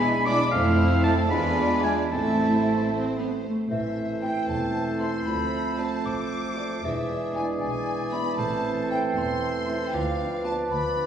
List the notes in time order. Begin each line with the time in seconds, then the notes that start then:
Already playing: B1 G#3 B3 D4 G#5 B5
0.00 G#3 E4 D5
0.25 G#3 D4 E4 D5 B5 D6
0.51 F2 F3 A3 C4 E4 C5 F5
1.03 A3 F5 A5
1.30 E2 G#3 B3 D4 F4 D5 G#5 B5
1.83 G#3 E5 G#5
2.10 A1 A3 C4 E4 C5 E5 A5
2.90 C4
3.17 B3
3.44 A3
3.70 A1 A2 E3 A3 C4 A4 C5 E5
4.22 C4 E4 A4 C5 G5
4.49 E1 E2 A5
5.00 C4 E4 A4 C5 C6
5.26 D2 F3 B5
5.78 C4 F4 A4 D5 A5
6.06 A1 A2 D6
6.58 C4 F4 A4 D5
6.84 E1 E2 E3 G#3 D4 G#4 D5 E5
7.35 B3 E4 G#4 D5 G#5
7.61 B1 B2 G#5
8.12 B3 E4 G#4 D5 B5
8.37 A1 A2 A3 C4 A4 C5 A5
8.90 C4 E4 A4 C5 G5
9.16 E1 E2 C6
9.68 C4 E4 A4 C5
9.87 G5
9.93 D2 F3 B4 D5 F5
10.20 B3 D4
10.45 B3 D4 F4 B4 D5 A5
10.71 D2 B5
10.97 B3 D4